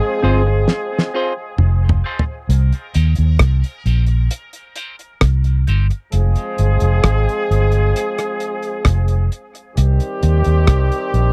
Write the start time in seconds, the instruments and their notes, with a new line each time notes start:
Already playing: horn section F3 G#3 C4 G#4
0.23 fingered electric bass G1, clean electric guitar C4 F4 G#4 C5
0.47 muted clean electric guitar stroke
0.68 snare
0.99 snare
1.14 clean electric guitar C4 F4 G#4 C5
1.58 fingered electric bass F1, mid tom
1.89 floor tom
2.04 clean electric guitar C4 F4 G#4 C5
2.19 floor tom
2.49 fingered electric bass C2, horn section G3 A#3 D#4 A#4, closed hi-hat
2.72 closed hi-hat
2.94 fingered electric bass D#2, clean electric guitar C4 D#4 G4 C5, closed hi-hat
3.15 fingered electric bass D#2, closed hi-hat
3.39 fingered electric bass C2, kick, cross-stick, closed hi-hat
3.64 closed hi-hat
3.86 fingered electric bass A#1, clean electric guitar C4 D#4 G4 C5, closed hi-hat
4.07 muted clean electric guitar stroke, closed hi-hat
4.31 closed hi-hat
4.53 closed hi-hat
4.76 clean electric guitar C4 D#4 G4 C5, closed hi-hat
4.99 muted clean electric guitar stroke, closed hi-hat
5.21 fingered electric bass C2, kick, cross-stick, closed hi-hat
5.44 closed hi-hat
5.67 fingered electric bass G1, clean electric guitar C4 D#4 G4 C5, closed hi-hat
5.91 muted clean electric guitar stroke, closed hi-hat
6.12 fingered electric bass F1, horn section F3 G#3 C4 G#4, closed hi-hat
6.36 closed hi-hat
6.58 fingered electric bass G1, closed hi-hat
6.80 fingered electric bass F1, closed hi-hat
7.03 fingered electric bass G#1, kick, cross-stick, closed hi-hat
7.29 closed hi-hat
7.51 fingered electric bass G1, closed hi-hat
7.72 closed hi-hat
7.96 closed hi-hat
8.18 cross-stick, closed hi-hat
8.40 closed hi-hat
8.63 closed hi-hat
8.85 fingered electric bass F1, kick, cross-stick, closed hi-hat
9.08 closed hi-hat
9.32 closed hi-hat
9.55 closed hi-hat
9.75 fingered electric bass C2, horn section D#3 G3 C4 G4, closed hi-hat
10.00 closed hi-hat
10.23 fingered electric bass D#2, closed hi-hat
10.44 fingered electric bass D#2, closed hi-hat
10.67 fingered electric bass C2, kick, cross-stick, closed hi-hat
10.92 closed hi-hat
11.14 fingered electric bass A#1, closed hi-hat